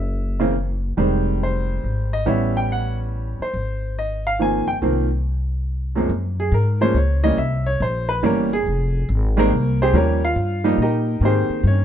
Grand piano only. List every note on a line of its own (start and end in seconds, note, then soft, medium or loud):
0.00 0.38 E5 medium
0.40 0.53 C#3 medium
0.40 0.53 E3 medium
0.40 0.53 A#3 medium
0.40 0.53 C4 medium
0.97 2.17 D#3 medium
0.97 2.17 G3 medium
0.97 2.17 G#3 medium
0.97 2.18 C4 medium
1.43 2.09 C5 medium
2.13 2.26 D#5 medium
2.26 3.45 E3 medium
2.26 3.45 G3 medium
2.26 3.46 B3 medium
2.26 3.46 C#4 medium
2.26 2.55 E5 medium
2.57 2.69 G5 medium
2.72 2.98 F#5 medium
3.42 3.94 C5 medium
3.99 4.25 D#5 medium
4.27 4.40 F5 medium
4.39 4.65 D#3 medium
4.39 4.65 F3 medium
4.39 4.65 A#3 soft
4.39 4.66 C4 medium
4.39 4.68 G#5 medium
4.68 4.76 G5 medium
4.82 5.07 D#3 medium
4.82 5.08 F3 medium
4.82 5.08 A#3 medium
4.82 5.08 C4 medium
5.95 6.09 F#2 medium
5.95 6.09 F3 medium
5.95 6.09 G#3 soft
5.95 6.09 A#3 medium
5.95 6.09 C4 medium
6.40 6.53 G#4 medium
6.54 6.81 A#4 medium
6.81 6.94 F3 medium
6.81 6.94 G#3 medium
6.81 6.94 A#3 medium
6.81 6.95 C#4 medium
6.81 6.95 C5 medium
6.97 7.24 C#5 medium
7.23 7.36 E3 medium
7.23 7.37 G3 medium
7.23 7.37 A#3 medium
7.23 7.37 C#4 medium
7.23 7.38 D#5 medium
7.38 7.66 E5 medium
7.66 7.80 C#5 medium
7.82 8.09 C5 medium
8.09 8.23 B4 medium
8.23 8.49 E3 medium
8.23 8.49 G3 medium
8.23 8.49 A#3 medium
8.23 8.49 C#4 medium
8.23 8.52 A#4 medium
8.53 9.06 G#4 medium
9.37 9.50 D#3 medium
9.37 9.50 G3 medium
9.37 9.50 G#3 medium
9.37 9.78 A#3 medium
9.37 9.51 C4 loud
9.37 9.78 A#4 medium
9.82 9.95 C4 medium
9.82 9.95 G4 medium
9.82 9.95 G#4 medium
9.82 9.95 C5 medium
9.94 10.19 F3 medium
9.94 10.20 G3 medium
9.94 10.20 A#3 medium
9.94 10.20 C#4 medium
9.94 10.23 G4 medium
9.94 10.23 A#4 medium
9.94 10.23 C#5 medium
10.25 10.77 F4 medium
10.25 10.77 F5 medium
10.64 10.78 F3 medium
10.64 10.78 G3 medium
10.64 10.78 A#3 medium
10.64 10.78 D#4 medium
10.82 11.21 D#4 medium
10.82 11.21 G4 medium
10.82 11.21 A#4 medium
10.82 11.21 D#5 medium
11.22 11.85 D#3 medium
11.22 11.85 A#3 medium
11.22 11.85 C4 medium
11.22 11.64 G4 medium
11.22 11.63 C5 medium
11.26 11.64 G#4 medium
11.67 11.85 C#4 medium
11.67 11.85 C#5 medium